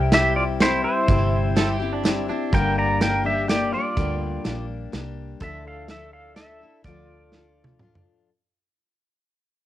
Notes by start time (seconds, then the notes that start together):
Already playing: C2 C3 G3 C4 E4 G4
0.12 G3 C4 E4 G4 E5, snare, closed hi-hat
0.36 F4 D5
0.60 G3 C4 E4 G4 C5, snare, closed hi-hat
0.84 E4 C5
1.08 G1 C3 G3 C4 E4 G4, kick, closed hi-hat
1.56 G3 C4 E4 G4 A4, snare, closed hi-hat
1.69 G4
1.80 C4 E4 G4
1.93 D4
2.03 G3 C4 E4 G4, snare, closed hi-hat
2.28 C4 D4 E4 G4
2.52 G1 G2 D3 G3 A#3 D4 G4 A#4 G5, kick, closed hi-hat
2.78 D5 A#5
3.01 G3 A#3 D4 G4 A#4 G5, snare, closed hi-hat
3.23 G3 A#3 D4 G4 E5
3.48 G3 A#3 D4 G4 D5, snare, closed hi-hat
3.73 A#3 D4 F4 G4 D5
3.77 G3
3.97 D2 G2 D3 G3 A#3 D4 G4, kick, closed hi-hat
4.44 A#1 G3 A#3 D4 G4, snare, closed hi-hat
4.92 C2 G3 A#3 D4 G4, snare, closed hi-hat
5.40 D2 D3 F3 D4 E4 A4 E5, kick, closed hi-hat
5.67 A4 F5
5.88 F3 D4 E4 A4 E5, snare, closed hi-hat
6.13 A4 F5
6.36 F3 D4 E4 A4 E5, snare, closed hi-hat
6.61 D4 E4 A4
6.84 D2 D3 F3 D4 F4 A4 D5, kick, closed hi-hat
7.32 F3 D4 F4 A4, snare
7.64 high tom
7.79 F3 D4 F4 A4, mid tom
7.95 mid tom